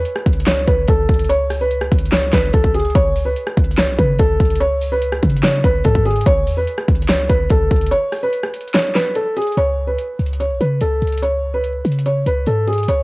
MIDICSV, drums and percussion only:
0, 0, Header, 1, 2, 480
1, 0, Start_track
1, 0, Tempo, 413793
1, 1503, Time_signature, 4, 2, 24, 8
1, 15115, End_track
2, 0, Start_track
2, 0, Title_t, "Drums"
2, 61, Note_on_c, 9, 42, 80
2, 177, Note_off_c, 9, 42, 0
2, 183, Note_on_c, 9, 37, 87
2, 299, Note_off_c, 9, 37, 0
2, 304, Note_on_c, 9, 36, 93
2, 304, Note_on_c, 9, 42, 55
2, 383, Note_off_c, 9, 42, 0
2, 383, Note_on_c, 9, 42, 76
2, 420, Note_off_c, 9, 36, 0
2, 464, Note_off_c, 9, 42, 0
2, 464, Note_on_c, 9, 42, 92
2, 540, Note_on_c, 9, 39, 94
2, 543, Note_on_c, 9, 38, 120
2, 547, Note_off_c, 9, 42, 0
2, 547, Note_on_c, 9, 42, 81
2, 656, Note_off_c, 9, 39, 0
2, 659, Note_off_c, 9, 38, 0
2, 663, Note_off_c, 9, 42, 0
2, 783, Note_on_c, 9, 36, 97
2, 785, Note_on_c, 9, 42, 79
2, 899, Note_off_c, 9, 36, 0
2, 901, Note_off_c, 9, 42, 0
2, 1016, Note_on_c, 9, 42, 74
2, 1024, Note_on_c, 9, 36, 100
2, 1132, Note_off_c, 9, 42, 0
2, 1140, Note_off_c, 9, 36, 0
2, 1263, Note_on_c, 9, 42, 45
2, 1264, Note_on_c, 9, 36, 89
2, 1323, Note_off_c, 9, 42, 0
2, 1323, Note_on_c, 9, 42, 57
2, 1380, Note_off_c, 9, 36, 0
2, 1383, Note_off_c, 9, 42, 0
2, 1383, Note_on_c, 9, 42, 66
2, 1444, Note_off_c, 9, 42, 0
2, 1444, Note_on_c, 9, 42, 75
2, 1504, Note_off_c, 9, 42, 0
2, 1504, Note_on_c, 9, 42, 88
2, 1620, Note_off_c, 9, 42, 0
2, 1743, Note_on_c, 9, 37, 70
2, 1743, Note_on_c, 9, 46, 82
2, 1859, Note_off_c, 9, 37, 0
2, 1859, Note_off_c, 9, 46, 0
2, 1981, Note_on_c, 9, 42, 82
2, 2097, Note_off_c, 9, 42, 0
2, 2103, Note_on_c, 9, 37, 89
2, 2219, Note_off_c, 9, 37, 0
2, 2223, Note_on_c, 9, 36, 90
2, 2224, Note_on_c, 9, 42, 77
2, 2303, Note_off_c, 9, 42, 0
2, 2303, Note_on_c, 9, 42, 76
2, 2339, Note_off_c, 9, 36, 0
2, 2383, Note_off_c, 9, 42, 0
2, 2383, Note_on_c, 9, 42, 77
2, 2460, Note_on_c, 9, 39, 91
2, 2463, Note_on_c, 9, 38, 118
2, 2467, Note_off_c, 9, 42, 0
2, 2467, Note_on_c, 9, 42, 84
2, 2576, Note_off_c, 9, 39, 0
2, 2579, Note_off_c, 9, 38, 0
2, 2583, Note_off_c, 9, 42, 0
2, 2701, Note_on_c, 9, 39, 77
2, 2703, Note_on_c, 9, 36, 97
2, 2704, Note_on_c, 9, 38, 96
2, 2704, Note_on_c, 9, 42, 81
2, 2817, Note_off_c, 9, 39, 0
2, 2819, Note_off_c, 9, 36, 0
2, 2820, Note_off_c, 9, 38, 0
2, 2820, Note_off_c, 9, 42, 0
2, 2936, Note_on_c, 9, 42, 71
2, 2944, Note_on_c, 9, 36, 101
2, 3052, Note_off_c, 9, 42, 0
2, 3060, Note_off_c, 9, 36, 0
2, 3063, Note_on_c, 9, 36, 97
2, 3179, Note_off_c, 9, 36, 0
2, 3183, Note_on_c, 9, 42, 75
2, 3243, Note_off_c, 9, 42, 0
2, 3243, Note_on_c, 9, 42, 65
2, 3303, Note_off_c, 9, 42, 0
2, 3303, Note_on_c, 9, 42, 55
2, 3363, Note_off_c, 9, 42, 0
2, 3363, Note_on_c, 9, 42, 44
2, 3423, Note_on_c, 9, 36, 121
2, 3424, Note_off_c, 9, 42, 0
2, 3424, Note_on_c, 9, 42, 85
2, 3539, Note_off_c, 9, 36, 0
2, 3540, Note_off_c, 9, 42, 0
2, 3662, Note_on_c, 9, 46, 82
2, 3778, Note_off_c, 9, 46, 0
2, 3901, Note_on_c, 9, 42, 84
2, 4017, Note_off_c, 9, 42, 0
2, 4023, Note_on_c, 9, 37, 87
2, 4139, Note_off_c, 9, 37, 0
2, 4143, Note_on_c, 9, 36, 93
2, 4143, Note_on_c, 9, 42, 56
2, 4223, Note_off_c, 9, 42, 0
2, 4223, Note_on_c, 9, 42, 72
2, 4259, Note_off_c, 9, 36, 0
2, 4304, Note_off_c, 9, 42, 0
2, 4304, Note_on_c, 9, 42, 92
2, 4380, Note_on_c, 9, 39, 93
2, 4383, Note_on_c, 9, 38, 114
2, 4387, Note_off_c, 9, 42, 0
2, 4387, Note_on_c, 9, 42, 81
2, 4496, Note_off_c, 9, 39, 0
2, 4499, Note_off_c, 9, 38, 0
2, 4503, Note_off_c, 9, 42, 0
2, 4623, Note_on_c, 9, 36, 93
2, 4624, Note_on_c, 9, 42, 76
2, 4739, Note_off_c, 9, 36, 0
2, 4740, Note_off_c, 9, 42, 0
2, 4857, Note_on_c, 9, 42, 73
2, 4864, Note_on_c, 9, 36, 102
2, 4973, Note_off_c, 9, 42, 0
2, 4980, Note_off_c, 9, 36, 0
2, 5104, Note_on_c, 9, 36, 92
2, 5104, Note_on_c, 9, 42, 47
2, 5164, Note_off_c, 9, 42, 0
2, 5164, Note_on_c, 9, 42, 56
2, 5220, Note_off_c, 9, 36, 0
2, 5224, Note_off_c, 9, 42, 0
2, 5224, Note_on_c, 9, 42, 67
2, 5284, Note_off_c, 9, 42, 0
2, 5284, Note_on_c, 9, 42, 77
2, 5344, Note_off_c, 9, 42, 0
2, 5344, Note_on_c, 9, 42, 83
2, 5460, Note_off_c, 9, 42, 0
2, 5583, Note_on_c, 9, 46, 78
2, 5699, Note_off_c, 9, 46, 0
2, 5822, Note_on_c, 9, 42, 79
2, 5938, Note_off_c, 9, 42, 0
2, 5943, Note_on_c, 9, 37, 89
2, 6059, Note_off_c, 9, 37, 0
2, 6064, Note_on_c, 9, 36, 90
2, 6064, Note_on_c, 9, 42, 55
2, 6144, Note_off_c, 9, 42, 0
2, 6144, Note_on_c, 9, 42, 75
2, 6180, Note_off_c, 9, 36, 0
2, 6224, Note_off_c, 9, 42, 0
2, 6224, Note_on_c, 9, 42, 91
2, 6300, Note_on_c, 9, 39, 95
2, 6303, Note_on_c, 9, 38, 119
2, 6307, Note_off_c, 9, 42, 0
2, 6307, Note_on_c, 9, 42, 83
2, 6416, Note_off_c, 9, 39, 0
2, 6419, Note_off_c, 9, 38, 0
2, 6423, Note_off_c, 9, 42, 0
2, 6543, Note_on_c, 9, 36, 93
2, 6545, Note_on_c, 9, 42, 80
2, 6659, Note_off_c, 9, 36, 0
2, 6661, Note_off_c, 9, 42, 0
2, 6776, Note_on_c, 9, 42, 75
2, 6784, Note_on_c, 9, 36, 96
2, 6892, Note_off_c, 9, 42, 0
2, 6900, Note_off_c, 9, 36, 0
2, 6903, Note_on_c, 9, 36, 98
2, 7019, Note_off_c, 9, 36, 0
2, 7024, Note_on_c, 9, 42, 46
2, 7084, Note_off_c, 9, 42, 0
2, 7084, Note_on_c, 9, 42, 57
2, 7144, Note_off_c, 9, 42, 0
2, 7144, Note_on_c, 9, 42, 66
2, 7204, Note_off_c, 9, 42, 0
2, 7204, Note_on_c, 9, 42, 75
2, 7264, Note_off_c, 9, 42, 0
2, 7264, Note_on_c, 9, 36, 118
2, 7264, Note_on_c, 9, 42, 85
2, 7380, Note_off_c, 9, 36, 0
2, 7380, Note_off_c, 9, 42, 0
2, 7503, Note_on_c, 9, 46, 78
2, 7619, Note_off_c, 9, 46, 0
2, 7741, Note_on_c, 9, 42, 84
2, 7857, Note_off_c, 9, 42, 0
2, 7863, Note_on_c, 9, 37, 87
2, 7979, Note_off_c, 9, 37, 0
2, 7983, Note_on_c, 9, 42, 55
2, 7984, Note_on_c, 9, 36, 94
2, 8063, Note_off_c, 9, 42, 0
2, 8063, Note_on_c, 9, 42, 74
2, 8100, Note_off_c, 9, 36, 0
2, 8143, Note_off_c, 9, 42, 0
2, 8143, Note_on_c, 9, 42, 92
2, 8220, Note_on_c, 9, 39, 92
2, 8223, Note_on_c, 9, 38, 120
2, 8227, Note_off_c, 9, 42, 0
2, 8227, Note_on_c, 9, 42, 83
2, 8336, Note_off_c, 9, 39, 0
2, 8339, Note_off_c, 9, 38, 0
2, 8343, Note_off_c, 9, 42, 0
2, 8463, Note_on_c, 9, 36, 95
2, 8465, Note_on_c, 9, 42, 79
2, 8579, Note_off_c, 9, 36, 0
2, 8581, Note_off_c, 9, 42, 0
2, 8696, Note_on_c, 9, 42, 72
2, 8704, Note_on_c, 9, 36, 102
2, 8812, Note_off_c, 9, 42, 0
2, 8820, Note_off_c, 9, 36, 0
2, 8943, Note_on_c, 9, 42, 45
2, 8944, Note_on_c, 9, 36, 91
2, 9004, Note_off_c, 9, 42, 0
2, 9004, Note_on_c, 9, 42, 55
2, 9060, Note_off_c, 9, 36, 0
2, 9064, Note_off_c, 9, 42, 0
2, 9064, Note_on_c, 9, 42, 66
2, 9124, Note_off_c, 9, 42, 0
2, 9124, Note_on_c, 9, 42, 78
2, 9184, Note_off_c, 9, 42, 0
2, 9184, Note_on_c, 9, 42, 85
2, 9300, Note_off_c, 9, 42, 0
2, 9423, Note_on_c, 9, 37, 67
2, 9423, Note_on_c, 9, 46, 79
2, 9539, Note_off_c, 9, 37, 0
2, 9539, Note_off_c, 9, 46, 0
2, 9661, Note_on_c, 9, 42, 81
2, 9777, Note_off_c, 9, 42, 0
2, 9783, Note_on_c, 9, 37, 85
2, 9899, Note_off_c, 9, 37, 0
2, 9904, Note_on_c, 9, 42, 77
2, 9984, Note_off_c, 9, 42, 0
2, 9984, Note_on_c, 9, 42, 74
2, 10064, Note_off_c, 9, 42, 0
2, 10064, Note_on_c, 9, 42, 79
2, 10140, Note_on_c, 9, 39, 94
2, 10143, Note_on_c, 9, 38, 117
2, 10147, Note_off_c, 9, 42, 0
2, 10147, Note_on_c, 9, 42, 85
2, 10256, Note_off_c, 9, 39, 0
2, 10259, Note_off_c, 9, 38, 0
2, 10263, Note_off_c, 9, 42, 0
2, 10381, Note_on_c, 9, 39, 77
2, 10385, Note_on_c, 9, 38, 97
2, 10385, Note_on_c, 9, 42, 77
2, 10497, Note_off_c, 9, 39, 0
2, 10501, Note_off_c, 9, 38, 0
2, 10501, Note_off_c, 9, 42, 0
2, 10617, Note_on_c, 9, 42, 74
2, 10733, Note_off_c, 9, 42, 0
2, 10863, Note_on_c, 9, 42, 75
2, 10923, Note_off_c, 9, 42, 0
2, 10923, Note_on_c, 9, 42, 64
2, 10984, Note_off_c, 9, 42, 0
2, 10984, Note_on_c, 9, 42, 54
2, 11044, Note_off_c, 9, 42, 0
2, 11044, Note_on_c, 9, 42, 45
2, 11104, Note_off_c, 9, 42, 0
2, 11104, Note_on_c, 9, 42, 81
2, 11220, Note_off_c, 9, 42, 0
2, 11581, Note_on_c, 9, 42, 76
2, 11697, Note_off_c, 9, 42, 0
2, 11824, Note_on_c, 9, 42, 52
2, 11904, Note_off_c, 9, 42, 0
2, 11904, Note_on_c, 9, 42, 70
2, 11984, Note_off_c, 9, 42, 0
2, 11984, Note_on_c, 9, 42, 86
2, 12067, Note_off_c, 9, 42, 0
2, 12067, Note_on_c, 9, 42, 78
2, 12183, Note_off_c, 9, 42, 0
2, 12305, Note_on_c, 9, 42, 74
2, 12421, Note_off_c, 9, 42, 0
2, 12536, Note_on_c, 9, 42, 70
2, 12652, Note_off_c, 9, 42, 0
2, 12784, Note_on_c, 9, 42, 44
2, 12844, Note_off_c, 9, 42, 0
2, 12844, Note_on_c, 9, 42, 51
2, 12903, Note_off_c, 9, 42, 0
2, 12903, Note_on_c, 9, 42, 62
2, 12964, Note_off_c, 9, 42, 0
2, 12964, Note_on_c, 9, 42, 75
2, 13024, Note_off_c, 9, 42, 0
2, 13024, Note_on_c, 9, 42, 80
2, 13140, Note_off_c, 9, 42, 0
2, 13501, Note_on_c, 9, 42, 76
2, 13617, Note_off_c, 9, 42, 0
2, 13743, Note_on_c, 9, 42, 52
2, 13823, Note_off_c, 9, 42, 0
2, 13823, Note_on_c, 9, 42, 69
2, 13903, Note_off_c, 9, 42, 0
2, 13903, Note_on_c, 9, 42, 86
2, 13987, Note_off_c, 9, 42, 0
2, 13987, Note_on_c, 9, 42, 77
2, 14103, Note_off_c, 9, 42, 0
2, 14225, Note_on_c, 9, 42, 77
2, 14341, Note_off_c, 9, 42, 0
2, 14457, Note_on_c, 9, 42, 70
2, 14573, Note_off_c, 9, 42, 0
2, 14703, Note_on_c, 9, 42, 42
2, 14763, Note_off_c, 9, 42, 0
2, 14763, Note_on_c, 9, 42, 52
2, 14823, Note_off_c, 9, 42, 0
2, 14823, Note_on_c, 9, 42, 62
2, 14883, Note_off_c, 9, 42, 0
2, 14883, Note_on_c, 9, 42, 72
2, 14944, Note_off_c, 9, 42, 0
2, 14944, Note_on_c, 9, 42, 78
2, 15060, Note_off_c, 9, 42, 0
2, 15115, End_track
0, 0, End_of_file